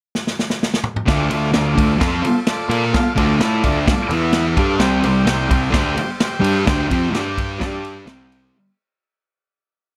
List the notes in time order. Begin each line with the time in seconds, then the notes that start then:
0.15 snare
0.27 snare
0.39 snare
0.50 snare
0.63 snare
0.74 snare
0.84 mid tom
0.96 mid tom
1.06 D2 D3 A3 D4 F4 A4 D5, kick, snare, ride
1.30 D2 D3 A3 A4, ride
1.34 F4 D5
1.54 D2 D3 A3, snare, ride
1.59 F4 A4 D5
1.76 D2 D3 A3, kick, ride
1.99 F2 F3 C4 F4, kick, snare, ride
2.05 F4 A4 C5
2.23 muted distorted electric guitar stroke, muted picked electric bass stroke, ride
2.47 F4 A4 D5, snare, ride
2.69 A#2 A#3 F4 A#4, ride
2.93 F4 A4 F5, muted distorted electric guitar stroke, muted picked electric bass stroke, kick, snare, ride
3.16 D2 D3 A3 D4 F4 A4 D5, kick, ride
3.39 A2 A3 E4 A4, snare, ride
3.44 F4 A4 D5
3.63 D2 D3 A3 D4, kick, ride
3.87 F4, muted distorted electric guitar stroke, muted picked electric bass stroke, kick, snare, ride
3.92 A4 D5
4.08 E2 E3 E4 B4 E5, ride
4.12 B3 E4
4.33 snare, ride
4.57 G2 G3 D4 G4 A4 D5 F5, kick, ride
4.79 C2 C3 G3 C4 G4 C5 G5, snare, ride
5.03 C2 C3 G3 G4 C5 G5, ride
5.24 C2 C3 G4 C5 G5, snare, ride
5.28 G3
5.49 C2 C3 G3, kick, ride
5.71 D2 D3 A3 D4 G4 C5 G5, kick, snare, ride
5.96 muted distorted electric guitar stroke, muted picked electric bass stroke, ride
6.20 G4 C5 G5, snare, ride
6.40 G2 G3 D4 G4
6.44 ride
6.65 D2 D3 A3 D4 G4 C5, kick, snare, ride
6.70 G5
6.89 F2 F3 C4 F4 G4, kick, ride
6.93 C5 G5
7.11 G2 G3 D4 G4 D5, snare, ride
7.16 G4 G5
7.38 kick, ride
7.59 G2 G3 D4 G4 D5 A5, kick, snare, ride
7.85 ride
8.05 C2 C3 G3 C4 G4 C5 G5, snare, ride
8.32 ride